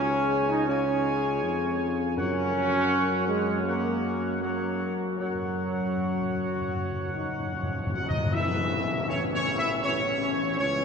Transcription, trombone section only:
0, 0, Header, 1, 2, 480
1, 0, Start_track
1, 0, Key_signature, 6, "major"
1, 0, Tempo, 745342
1, 1400, Time_signature, 4, 2, 24, 8
1, 2844, Tempo, 784314
1, 5244, Tempo, 747198
1, 6856, End_track
2, 0, Start_track
2, 0, Title_t, "Trombone section"
2, 0, Program_c, 0, 61
2, 0, Note_on_c, 0, 61, 104
2, 294, Note_off_c, 0, 61, 0
2, 317, Note_on_c, 0, 63, 97
2, 430, Note_off_c, 0, 63, 0
2, 434, Note_on_c, 0, 61, 90
2, 892, Note_off_c, 0, 61, 0
2, 1390, Note_on_c, 0, 61, 124
2, 2087, Note_off_c, 0, 61, 0
2, 2111, Note_on_c, 0, 56, 96
2, 2346, Note_on_c, 0, 58, 77
2, 2354, Note_off_c, 0, 56, 0
2, 2839, Note_off_c, 0, 58, 0
2, 2840, Note_on_c, 0, 54, 78
2, 3292, Note_off_c, 0, 54, 0
2, 3318, Note_on_c, 0, 54, 85
2, 4736, Note_off_c, 0, 54, 0
2, 5245, Note_on_c, 0, 49, 74
2, 5246, Note_on_c, 0, 52, 76
2, 5703, Note_off_c, 0, 49, 0
2, 5704, Note_off_c, 0, 52, 0
2, 5726, Note_on_c, 0, 49, 69
2, 5729, Note_on_c, 0, 52, 72
2, 6180, Note_off_c, 0, 49, 0
2, 6181, Note_off_c, 0, 52, 0
2, 6204, Note_on_c, 0, 52, 66
2, 6205, Note_on_c, 0, 49, 65
2, 6657, Note_off_c, 0, 49, 0
2, 6657, Note_off_c, 0, 52, 0
2, 6683, Note_on_c, 0, 52, 68
2, 6684, Note_on_c, 0, 49, 70
2, 6856, Note_off_c, 0, 49, 0
2, 6856, Note_off_c, 0, 52, 0
2, 6856, End_track
0, 0, End_of_file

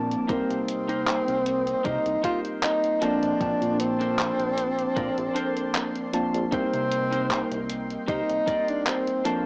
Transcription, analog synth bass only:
0, 0, Header, 1, 2, 480
1, 0, Start_track
1, 0, Tempo, 779221
1, 180, Time_signature, 4, 2, 24, 8
1, 5827, End_track
2, 0, Start_track
2, 0, Title_t, "Analog synth bass"
2, 0, Program_c, 0, 38
2, 0, Note_on_c, 0, 46, 90
2, 96, Note_off_c, 0, 46, 0
2, 179, Note_on_c, 0, 36, 96
2, 259, Note_off_c, 0, 36, 0
2, 309, Note_on_c, 0, 48, 80
2, 660, Note_on_c, 0, 36, 91
2, 669, Note_off_c, 0, 48, 0
2, 740, Note_off_c, 0, 36, 0
2, 788, Note_on_c, 0, 36, 82
2, 1072, Note_off_c, 0, 36, 0
2, 1138, Note_on_c, 0, 48, 102
2, 1219, Note_off_c, 0, 48, 0
2, 1269, Note_on_c, 0, 36, 97
2, 1338, Note_off_c, 0, 36, 0
2, 1988, Note_on_c, 0, 34, 95
2, 2057, Note_off_c, 0, 34, 0
2, 2099, Note_on_c, 0, 34, 97
2, 2179, Note_off_c, 0, 34, 0
2, 2228, Note_on_c, 0, 46, 80
2, 2579, Note_on_c, 0, 34, 88
2, 2588, Note_off_c, 0, 46, 0
2, 2659, Note_off_c, 0, 34, 0
2, 2708, Note_on_c, 0, 34, 77
2, 2992, Note_off_c, 0, 34, 0
2, 3059, Note_on_c, 0, 46, 104
2, 3139, Note_off_c, 0, 46, 0
2, 3189, Note_on_c, 0, 34, 96
2, 3258, Note_off_c, 0, 34, 0
2, 3907, Note_on_c, 0, 34, 97
2, 3977, Note_off_c, 0, 34, 0
2, 4019, Note_on_c, 0, 36, 93
2, 4099, Note_off_c, 0, 36, 0
2, 4148, Note_on_c, 0, 48, 82
2, 4500, Note_on_c, 0, 36, 89
2, 4509, Note_off_c, 0, 48, 0
2, 4580, Note_off_c, 0, 36, 0
2, 4628, Note_on_c, 0, 36, 80
2, 4912, Note_off_c, 0, 36, 0
2, 4978, Note_on_c, 0, 48, 101
2, 5059, Note_off_c, 0, 48, 0
2, 5109, Note_on_c, 0, 36, 100
2, 5178, Note_off_c, 0, 36, 0
2, 5827, End_track
0, 0, End_of_file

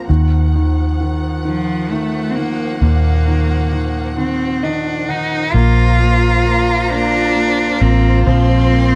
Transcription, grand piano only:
0, 0, Header, 1, 2, 480
1, 0, Start_track
1, 0, Key_signature, -2, "major"
1, 0, Tempo, 907716
1, 47, Time_signature, 6, 3, 24, 8
1, 4733, End_track
2, 0, Start_track
2, 0, Title_t, "Grand piano"
2, 0, Program_c, 0, 0
2, 0, Control_c, 0, 64, 127
2, 0, Note_on_c, 0, 58, 43
2, 0, Note_on_c, 0, 65, 42
2, 47, Note_on_c, 0, 51, 52
2, 53, Control_c, 0, 64, 0
2, 55, Note_off_c, 0, 58, 0
2, 55, Note_off_c, 0, 65, 0
2, 132, Control_c, 0, 64, 127
2, 285, Note_off_c, 0, 51, 0
2, 293, Note_on_c, 0, 51, 44
2, 523, Note_off_c, 0, 51, 0
2, 531, Note_on_c, 0, 51, 47
2, 759, Note_off_c, 0, 51, 0
2, 766, Note_on_c, 0, 51, 44
2, 1007, Note_off_c, 0, 51, 0
2, 1015, Note_on_c, 0, 51, 45
2, 1247, Note_off_c, 0, 51, 0
2, 1255, Note_on_c, 0, 51, 40
2, 1490, Note_on_c, 0, 46, 48
2, 1725, Note_off_c, 0, 51, 0
2, 1733, Note_on_c, 0, 51, 42
2, 1961, Note_off_c, 0, 51, 0
2, 1969, Note_on_c, 0, 51, 39
2, 2201, Note_off_c, 0, 51, 0
2, 2209, Note_on_c, 0, 51, 45
2, 2442, Note_off_c, 0, 51, 0
2, 2448, Note_on_c, 0, 75, 53
2, 2449, Note_on_c, 0, 51, 44
2, 2672, Note_off_c, 0, 75, 0
2, 2681, Note_off_c, 0, 51, 0
2, 2689, Note_on_c, 0, 51, 38
2, 2689, Note_on_c, 0, 78, 50
2, 2908, Note_off_c, 0, 46, 0
2, 2912, Note_off_c, 0, 78, 0
2, 2922, Note_off_c, 0, 51, 0
2, 2927, Note_on_c, 0, 58, 63
2, 2935, Control_c, 0, 64, 0
2, 3014, Control_c, 0, 64, 127
2, 3164, Note_off_c, 0, 58, 0
2, 3172, Note_on_c, 0, 58, 52
2, 3402, Note_off_c, 0, 58, 0
2, 3410, Note_on_c, 0, 58, 53
2, 3649, Note_off_c, 0, 58, 0
2, 3657, Note_on_c, 0, 58, 55
2, 3884, Note_off_c, 0, 58, 0
2, 3892, Note_on_c, 0, 58, 56
2, 4123, Note_off_c, 0, 58, 0
2, 4131, Note_on_c, 0, 58, 48
2, 4372, Note_on_c, 0, 53, 61
2, 4603, Note_off_c, 0, 58, 0
2, 4611, Note_on_c, 0, 58, 58
2, 4733, Note_off_c, 0, 53, 0
2, 4733, Note_off_c, 0, 58, 0
2, 4733, End_track
0, 0, End_of_file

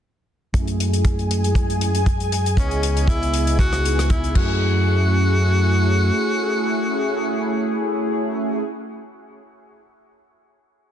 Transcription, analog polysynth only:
0, 0, Header, 1, 2, 480
1, 0, Start_track
1, 0, Tempo, 508475
1, 513, Time_signature, 4, 2, 24, 8
1, 10307, End_track
2, 0, Start_track
2, 0, Title_t, "Analog polysynth"
2, 0, Program_c, 0, 90
2, 499, Note_on_c, 0, 57, 86
2, 505, Note_on_c, 0, 61, 77
2, 512, Note_on_c, 0, 64, 78
2, 518, Note_on_c, 0, 68, 93
2, 1804, Note_off_c, 0, 57, 0
2, 1807, Note_off_c, 0, 61, 0
2, 1810, Note_off_c, 0, 64, 0
2, 1813, Note_off_c, 0, 68, 0
2, 1833, Note_on_c, 0, 57, 68
2, 1837, Note_on_c, 0, 61, 63
2, 1839, Note_on_c, 0, 64, 62
2, 1843, Note_on_c, 0, 68, 75
2, 1895, Note_off_c, 0, 57, 0
2, 1896, Note_off_c, 0, 61, 0
2, 1897, Note_off_c, 0, 64, 0
2, 1900, Note_off_c, 0, 68, 0
2, 2422, Note_on_c, 0, 59, 80
2, 2429, Note_on_c, 0, 75, 74
2, 2435, Note_on_c, 0, 64, 71
2, 2441, Note_on_c, 0, 68, 90
2, 3601, Note_off_c, 0, 59, 0
2, 3604, Note_off_c, 0, 75, 0
2, 3607, Note_off_c, 0, 64, 0
2, 3610, Note_off_c, 0, 68, 0
2, 3621, Note_on_c, 0, 59, 78
2, 3629, Note_on_c, 0, 63, 70
2, 3635, Note_on_c, 0, 64, 74
2, 3641, Note_on_c, 0, 68, 86
2, 4099, Note_on_c, 0, 57, 83
2, 4106, Note_off_c, 0, 64, 0
2, 4107, Note_off_c, 0, 59, 0
2, 4107, Note_on_c, 0, 61, 74
2, 4111, Note_off_c, 0, 63, 0
2, 4115, Note_off_c, 0, 68, 0
2, 4117, Note_on_c, 0, 64, 75
2, 4126, Note_on_c, 0, 68, 90
2, 8136, Note_off_c, 0, 57, 0
2, 8144, Note_off_c, 0, 61, 0
2, 8154, Note_off_c, 0, 64, 0
2, 8163, Note_off_c, 0, 68, 0
2, 10307, End_track
0, 0, End_of_file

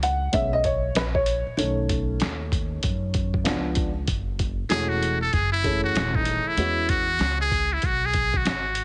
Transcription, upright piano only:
0, 0, Header, 1, 2, 480
1, 0, Start_track
1, 0, Tempo, 625000
1, 1213, Time_signature, 4, 2, 24, 8
1, 6791, End_track
2, 0, Start_track
2, 0, Title_t, "Upright piano"
2, 0, Program_c, 0, 0
2, 25, Note_on_c, 0, 78, 98
2, 248, Note_on_c, 0, 56, 52
2, 250, Note_on_c, 0, 59, 45
2, 252, Note_on_c, 0, 61, 52
2, 258, Note_on_c, 0, 76, 94
2, 266, Note_off_c, 0, 78, 0
2, 408, Note_on_c, 0, 75, 107
2, 411, Note_off_c, 0, 76, 0
2, 466, Note_off_c, 0, 56, 0
2, 467, Note_off_c, 0, 59, 0
2, 469, Note_off_c, 0, 61, 0
2, 498, Note_off_c, 0, 75, 0
2, 499, Note_on_c, 0, 73, 81
2, 740, Note_on_c, 0, 71, 79
2, 743, Note_off_c, 0, 73, 0
2, 779, Note_off_c, 0, 71, 0
2, 881, Note_on_c, 0, 73, 79
2, 1208, Note_on_c, 0, 51, 51
2, 1211, Note_on_c, 0, 57, 49
2, 1216, Note_on_c, 0, 61, 61
2, 1332, Note_off_c, 0, 73, 0
2, 2620, Note_off_c, 0, 51, 0
2, 2621, Note_off_c, 0, 57, 0
2, 2624, Note_off_c, 0, 61, 0
2, 2643, Note_on_c, 0, 53, 52
2, 2647, Note_on_c, 0, 59, 51
2, 2652, Note_on_c, 0, 62, 54
2, 2991, Note_off_c, 0, 53, 0
2, 2993, Note_off_c, 0, 59, 0
2, 2996, Note_off_c, 0, 62, 0
2, 3603, Note_on_c, 0, 52, 74
2, 3610, Note_on_c, 0, 56, 68
2, 3614, Note_on_c, 0, 57, 69
2, 3617, Note_on_c, 0, 61, 61
2, 3621, Note_on_c, 0, 66, 77
2, 3969, Note_off_c, 0, 52, 0
2, 3972, Note_off_c, 0, 56, 0
2, 3974, Note_off_c, 0, 57, 0
2, 3976, Note_off_c, 0, 61, 0
2, 3978, Note_off_c, 0, 66, 0
2, 4326, Note_on_c, 0, 52, 68
2, 4331, Note_on_c, 0, 68, 55
2, 4335, Note_on_c, 0, 57, 54
2, 4341, Note_on_c, 0, 61, 60
2, 4343, Note_on_c, 0, 69, 73
2, 5014, Note_off_c, 0, 52, 0
2, 5016, Note_off_c, 0, 68, 0
2, 5019, Note_off_c, 0, 57, 0
2, 5022, Note_off_c, 0, 61, 0
2, 5022, Note_off_c, 0, 69, 0
2, 5042, Note_on_c, 0, 52, 55
2, 5047, Note_on_c, 0, 56, 56
2, 5052, Note_on_c, 0, 59, 59
2, 5056, Note_on_c, 0, 61, 51
2, 5064, Note_on_c, 0, 66, 64
2, 5408, Note_off_c, 0, 52, 0
2, 5411, Note_off_c, 0, 56, 0
2, 5413, Note_off_c, 0, 59, 0
2, 5415, Note_off_c, 0, 61, 0
2, 5419, Note_off_c, 0, 66, 0
2, 6791, End_track
0, 0, End_of_file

